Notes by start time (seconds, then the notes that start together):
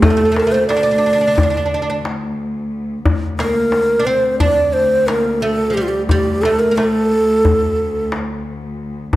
Already playing: D2
0.02 A3 A4, darbuka dum
0.10 A3
0.17 A3
0.25 A3
0.32 A3 A#4
0.36 A3, darbuka tek
0.47 A3
0.52 A3 C5
0.69 D4 D5, darbuka tek
0.77 D4
0.83 D4
0.91 D4
0.98 D4
1.04 D4, darbuka ka
1.13 D4
1.21 D4
1.27 D4
1.35 D4, darbuka dum
1.43 D4
1.50 D4
1.57 D4
1.66 D4
1.72 D4, darbuka ka
1.82 D4
1.90 D4
2.05 darbuka tek
3.05 D2, darbuka dum
3.23 darbuka ka
3.39 A#3 A#4, darbuka tek
3.72 darbuka tek
4.00 D4
4.05 C4 C5, darbuka ka
4.40 D4 D5, darbuka dum
4.73 C5
5.07 A#3 A#4, darbuka tek
5.41 A3 A4
5.70 F3 G4
5.77 G3
5.82 F4
5.88 G4
6.08 G3 G4, darbuka dum
6.27 darbuka ka
6.42 A3 A4, darbuka tek
6.59 A#4
6.71 A#3
6.76 A3 A4, darbuka tek
7.11 darbuka ka
7.45 darbuka dum
8.12 darbuka tek
9.12 D2, darbuka dum